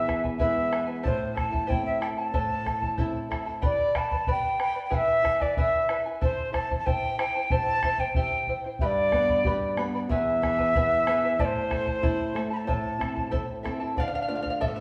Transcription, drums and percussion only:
0.09 bombo rim soft
0.09 bombo low soft
0.24 bombo low medium
0.40 bombo low medium
0.73 bombo rim medium
1.05 bombo low medium
1.37 bombo rim soft
1.37 bombo low medium
1.54 bombo low medium
1.71 bombo low medium
2.02 bombo rim medium
2.34 bombo low medium
2.66 bombo rim soft
2.66 bombo low medium
2.82 bombo low medium
2.98 bombo low medium
3.32 bombo rim medium
3.32 bombo low soft
3.63 bombo low medium
3.95 bombo rim medium
3.95 bombo low medium
4.11 bombo low medium
4.27 bombo low medium
4.60 bombo rim medium
4.92 bombo low medium
5.25 bombo rim soft
5.25 bombo low medium
5.41 bombo low medium
5.57 bombo low medium
5.89 bombo rim medium
6.22 bombo low medium
6.54 bombo rim medium
6.54 bombo low medium
6.71 bombo low medium
6.87 bombo low medium
7.19 bombo rim medium
7.50 bombo low medium
7.83 bombo rim medium
7.83 bombo low medium
7.98 bombo low medium
8.15 bombo low medium
8.47 bombo low soft
8.79 bombo low medium
9.12 bombo rim soft
9.12 bombo low medium
9.29 bombo low soft
9.45 bombo low medium
9.77 bombo rim medium
10.10 bombo low medium
10.43 bombo rim soft
10.43 bombo low medium
10.59 bombo low soft
10.75 bombo low medium
11.07 bombo rim medium
11.39 bombo low medium
11.71 bombo rim soft
11.71 bombo low medium
11.87 bombo low medium
12.03 bombo low medium
12.36 bombo rim soft
12.69 bombo low medium
13.01 bombo rim soft
13.01 bombo low soft
13.17 bombo low medium
13.33 bombo low medium
13.66 bombo rim soft
13.66 bombo low soft
13.97 bombo low medium
14.46 bombo low soft
14.62 bombo low medium

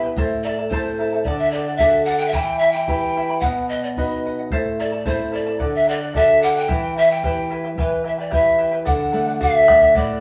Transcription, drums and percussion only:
0.17 bombo low medium
0.71 bombo low medium
1.25 bombo low medium
1.79 bombo low medium
2.33 bombo low medium
2.88 bombo low medium
3.42 bombo low medium
3.97 bombo low medium
4.50 bombo low medium
5.06 bombo low medium
5.60 bombo low medium
6.15 bombo low medium
6.69 bombo low medium
7.24 bombo low medium
7.78 bombo low medium
8.32 bombo low medium
8.87 bombo low medium
9.41 bombo low medium
9.68 bombo rim medium
9.68 bombo low medium
9.81 bombo low medium
9.95 bombo low medium

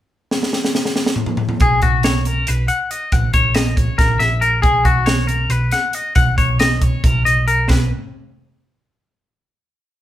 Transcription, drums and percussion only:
0.31 snare medium
0.43 snare medium
0.53 snare medium
0.65 snare medium
0.75 snare medium
0.85 snare medium
0.96 snare medium
1.06 snare medium
1.16 mid tom medium
1.26 mid tom medium
1.37 mid tom medium
1.49 mid tom medium
1.60 kick medium
1.60 closed hi-hat medium
1.82 kick medium
1.82 closed hi-hat medium
2.03 snare loud
2.03 closed hi-hat medium
2.25 closed hi-hat medium
2.47 closed hi-hat medium
2.68 closed hi-hat medium
2.91 closed hi-hat medium
3.12 kick medium
3.12 closed hi-hat medium
3.33 kick medium
3.33 closed hi-hat medium
3.54 snare medium
3.54 closed hi-hat medium
3.77 kick medium
3.77 closed hi-hat medium
3.99 kick medium
3.99 snare soft
3.99 closed hi-hat medium
4.20 snare soft
4.20 closed hi-hat soft
4.42 closed hi-hat medium
4.63 kick medium
4.63 closed hi-hat medium
4.85 kick medium
4.85 closed hi-hat medium
5.06 snare medium
5.06 closed hi-hat medium
5.28 closed hi-hat medium
5.50 closed hi-hat medium
5.71 snare soft
5.71 closed hi-hat medium
5.93 closed hi-hat medium
6.15 kick medium
6.15 closed hi-hat medium
6.38 kick medium
6.38 closed hi-hat medium
6.60 snare medium
6.60 closed hi-hat medium
6.81 kick medium
6.81 closed hi-hat medium
7.04 kick medium
7.04 closed hi-hat medium
7.26 closed hi-hat medium
7.48 closed hi-hat medium
7.69 kick medium
7.69 snare medium
7.69 splash medium

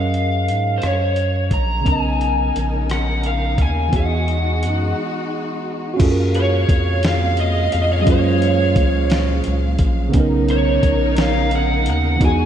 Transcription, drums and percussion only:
0.14 closed hi-hat soft
0.48 closed hi-hat medium
0.82 cross-stick loud
0.82 closed hi-hat medium
1.16 closed hi-hat soft
1.51 kick medium
1.51 closed hi-hat medium
1.86 kick loud
1.86 closed hi-hat medium
2.21 closed hi-hat soft
2.56 closed hi-hat medium
2.90 cross-stick loud
2.90 closed hi-hat medium
3.24 closed hi-hat soft
3.58 kick medium
3.58 closed hi-hat medium
3.93 kick loud
3.93 closed hi-hat medium
4.28 closed hi-hat soft
4.63 closed hi-hat medium
6.00 kick loud
6.00 closed hi-hat medium
6.00 crash loud
6.34 closed hi-hat soft
6.69 kick loud
6.69 closed hi-hat medium
7.03 snare loud
7.03 closed hi-hat medium
7.37 closed hi-hat medium
7.72 closed hi-hat medium
8.07 kick loud
8.07 closed hi-hat medium
8.42 closed hi-hat medium
8.76 kick loud
8.76 closed hi-hat medium
9.10 snare loud
9.10 closed hi-hat medium
9.44 closed hi-hat medium
9.79 kick medium
9.79 closed hi-hat medium
10.14 kick loud
10.14 closed hi-hat medium
10.48 closed hi-hat medium
10.83 kick loud
10.83 closed hi-hat medium
11.17 snare loud
11.17 closed hi-hat medium
11.51 closed hi-hat medium
11.86 closed hi-hat medium
12.21 kick loud
12.21 closed hi-hat medium

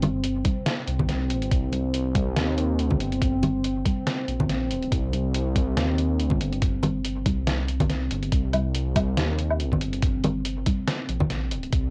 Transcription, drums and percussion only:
0.03 closed hi-hat medium
0.03 high conga medium
0.03 low conga medium
0.24 closed hi-hat medium
0.45 kick loud
0.45 closed hi-hat medium
0.45 high conga medium
0.66 snare loud
0.66 closed hi-hat medium
0.88 closed hi-hat soft
0.99 kick medium
0.99 low conga medium
1.09 snare medium
1.09 closed hi-hat medium
1.30 closed hi-hat medium
1.42 closed hi-hat soft
1.51 kick loud
1.51 closed hi-hat medium
1.72 closed hi-hat soft
1.72 high conga medium
1.94 closed hi-hat medium
2.15 kick loud
2.15 closed hi-hat medium
2.15 high conga medium
2.36 snare loud
2.36 closed hi-hat medium
2.58 closed hi-hat soft
2.79 closed hi-hat medium
2.90 kick medium
2.90 low conga medium
3.00 closed hi-hat medium
3.12 closed hi-hat soft
3.22 kick loud
3.22 closed hi-hat medium
3.43 closed hi-hat soft
3.43 high conga medium
3.43 low conga medium
3.64 closed hi-hat medium
3.85 kick loud
3.85 closed hi-hat medium
3.85 high conga medium
4.07 snare loud
4.07 closed hi-hat medium
4.28 closed hi-hat soft
4.40 kick medium
4.40 low conga medium
4.49 snare medium
4.49 closed hi-hat soft
4.71 closed hi-hat medium
4.82 closed hi-hat soft
4.92 kick loud
4.92 closed hi-hat medium
5.13 closed hi-hat soft
5.13 high conga medium
5.34 closed hi-hat medium
5.56 kick loud
5.56 closed hi-hat medium
5.56 high conga medium
5.77 snare loud
5.77 closed hi-hat medium
5.98 closed hi-hat soft
6.20 closed hi-hat soft
6.30 kick medium
6.30 low conga medium
6.41 closed hi-hat medium
6.53 closed hi-hat soft
6.62 kick loud
6.62 closed hi-hat medium
6.83 closed hi-hat medium
6.83 high conga medium
6.83 low conga medium
7.05 closed hi-hat medium
7.26 kick loud
7.26 closed hi-hat medium
7.26 high conga medium
7.47 snare loud
7.47 closed hi-hat medium
7.68 closed hi-hat medium
7.80 kick medium
7.80 closed hi-hat soft
7.80 low conga loud
7.90 snare medium
7.90 closed hi-hat medium
8.11 closed hi-hat medium
8.23 closed hi-hat soft
8.32 kick loud
8.32 closed hi-hat medium
8.53 closed hi-hat medium
8.53 high conga medium
8.53 low woodblock medium
8.75 closed hi-hat medium
8.96 kick loud
8.96 closed hi-hat medium
8.96 high conga medium
8.96 low woodblock medium
9.17 snare loud
9.17 closed hi-hat medium
9.39 closed hi-hat medium
9.50 low woodblock medium
9.60 closed hi-hat medium
9.72 kick medium
9.72 low conga medium
9.81 closed hi-hat medium
9.93 closed hi-hat soft
10.02 kick loud
10.02 closed hi-hat medium
10.24 closed hi-hat medium
10.24 high conga medium
10.24 low conga medium
10.45 closed hi-hat medium
10.66 kick loud
10.66 closed hi-hat medium
10.66 high conga medium
10.88 snare loud
10.88 closed hi-hat medium
11.09 closed hi-hat medium
11.20 kick medium
11.20 low conga medium
11.30 snare medium
11.30 closed hi-hat medium
11.51 closed hi-hat medium
11.63 closed hi-hat soft
11.73 kick loud
11.73 closed hi-hat medium

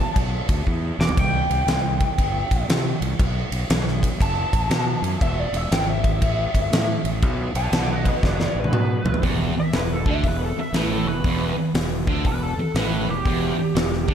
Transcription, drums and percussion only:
0.16 kick loud
0.16 ride loud
0.49 kick loud
0.49 ride medium
0.67 kick medium
1.01 snare medium
1.09 floor tom medium
1.17 kick loud
1.17 crash medium
1.51 ride medium
1.68 snare loud
1.68 ride loud
2.00 kick medium
2.00 ride medium
2.18 kick medium
2.18 ride loud
2.51 kick loud
2.51 ride medium
2.70 snare loud
2.70 ride loud
3.02 ride medium
3.20 kick loud
3.20 ride loud
3.52 ride medium
3.70 snare loud
3.70 ride loud
3.88 snare soft
4.03 kick medium
4.03 ride medium
4.21 kick medium
4.21 ride loud
4.53 kick loud
4.53 ride medium
4.71 snare loud
4.71 ride loud
5.04 ride medium
5.21 kick loud
5.21 ride loud
5.54 ride medium
5.72 snare loud
5.72 ride loud
6.04 kick medium
6.04 ride medium
6.22 kick medium
6.22 ride loud
6.55 kick medium
6.55 ride medium
6.73 snare loud
6.73 ride loud
7.05 ride medium
7.23 kick loud
7.23 ride medium
7.55 ride medium
7.73 snare loud
7.73 ride loud
8.05 kick medium
8.05 ride medium
8.23 kick medium
8.23 snare medium
8.40 snare medium
8.64 high tom medium
8.73 mid tom loud
9.06 floor tom loud
9.14 floor tom loud
9.23 kick loud
9.23 open hi-hat soft
9.73 snare loud
9.73 open hi-hat medium
10.06 kick loud
10.24 kick medium
10.24 open hi-hat soft
10.74 snare loud
10.74 open hi-hat medium
11.24 kick loud
11.24 open hi-hat soft
11.75 snare loud
11.75 open hi-hat medium
12.07 kick medium
12.25 kick medium
12.25 open hi-hat medium
12.75 snare loud
12.75 open hi-hat medium
13.26 kick loud
13.26 open hi-hat medium
13.76 snare loud
13.76 open hi-hat medium
13.93 snare soft
14.08 kick loud

